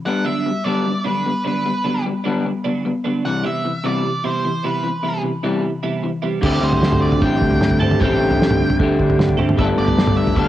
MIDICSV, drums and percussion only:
0, 0, Header, 1, 2, 480
1, 0, Start_track
1, 0, Key_signature, 1, "major"
1, 0, Tempo, 398936
1, 65, Time_signature, 4, 2, 24, 8
1, 6784, Tempo, 394218
1, 12683, End_track
2, 0, Start_track
2, 0, Title_t, "Drums"
2, 7746, Note_on_c, 9, 43, 82
2, 7746, Note_on_c, 9, 49, 101
2, 7749, Note_on_c, 9, 36, 108
2, 7867, Note_off_c, 9, 43, 0
2, 7867, Note_off_c, 9, 49, 0
2, 7871, Note_off_c, 9, 36, 0
2, 8109, Note_on_c, 9, 43, 83
2, 8231, Note_off_c, 9, 43, 0
2, 8235, Note_on_c, 9, 38, 77
2, 8352, Note_on_c, 9, 43, 81
2, 8352, Note_on_c, 9, 47, 80
2, 8356, Note_off_c, 9, 38, 0
2, 8474, Note_off_c, 9, 43, 0
2, 8474, Note_off_c, 9, 47, 0
2, 8589, Note_on_c, 9, 43, 88
2, 8709, Note_on_c, 9, 36, 113
2, 8711, Note_off_c, 9, 43, 0
2, 8831, Note_off_c, 9, 36, 0
2, 8949, Note_on_c, 9, 36, 65
2, 9061, Note_on_c, 9, 43, 84
2, 9071, Note_off_c, 9, 36, 0
2, 9182, Note_off_c, 9, 43, 0
2, 9184, Note_on_c, 9, 47, 75
2, 9195, Note_on_c, 9, 38, 71
2, 9303, Note_on_c, 9, 43, 86
2, 9305, Note_off_c, 9, 47, 0
2, 9316, Note_off_c, 9, 38, 0
2, 9425, Note_off_c, 9, 43, 0
2, 9427, Note_on_c, 9, 47, 75
2, 9549, Note_off_c, 9, 47, 0
2, 9551, Note_on_c, 9, 47, 79
2, 9671, Note_on_c, 9, 36, 106
2, 9673, Note_off_c, 9, 47, 0
2, 9675, Note_on_c, 9, 43, 87
2, 9793, Note_off_c, 9, 36, 0
2, 9796, Note_off_c, 9, 43, 0
2, 10035, Note_on_c, 9, 43, 88
2, 10157, Note_off_c, 9, 43, 0
2, 10171, Note_on_c, 9, 38, 81
2, 10276, Note_on_c, 9, 43, 88
2, 10276, Note_on_c, 9, 47, 75
2, 10293, Note_off_c, 9, 38, 0
2, 10398, Note_off_c, 9, 43, 0
2, 10398, Note_off_c, 9, 47, 0
2, 10510, Note_on_c, 9, 43, 88
2, 10631, Note_on_c, 9, 36, 104
2, 10632, Note_off_c, 9, 43, 0
2, 10753, Note_off_c, 9, 36, 0
2, 10871, Note_on_c, 9, 36, 70
2, 10993, Note_off_c, 9, 36, 0
2, 10995, Note_on_c, 9, 43, 86
2, 11110, Note_on_c, 9, 47, 74
2, 11117, Note_off_c, 9, 43, 0
2, 11121, Note_on_c, 9, 38, 76
2, 11229, Note_on_c, 9, 43, 84
2, 11232, Note_off_c, 9, 47, 0
2, 11242, Note_off_c, 9, 38, 0
2, 11348, Note_on_c, 9, 47, 75
2, 11351, Note_off_c, 9, 43, 0
2, 11470, Note_off_c, 9, 47, 0
2, 11472, Note_on_c, 9, 47, 74
2, 11590, Note_on_c, 9, 36, 113
2, 11591, Note_on_c, 9, 43, 84
2, 11594, Note_off_c, 9, 47, 0
2, 11712, Note_off_c, 9, 36, 0
2, 11713, Note_off_c, 9, 43, 0
2, 11947, Note_on_c, 9, 43, 84
2, 12069, Note_off_c, 9, 43, 0
2, 12077, Note_on_c, 9, 38, 81
2, 12186, Note_on_c, 9, 43, 78
2, 12186, Note_on_c, 9, 47, 78
2, 12199, Note_off_c, 9, 38, 0
2, 12307, Note_off_c, 9, 43, 0
2, 12307, Note_off_c, 9, 47, 0
2, 12427, Note_on_c, 9, 43, 86
2, 12541, Note_on_c, 9, 36, 113
2, 12549, Note_off_c, 9, 43, 0
2, 12662, Note_off_c, 9, 36, 0
2, 12683, End_track
0, 0, End_of_file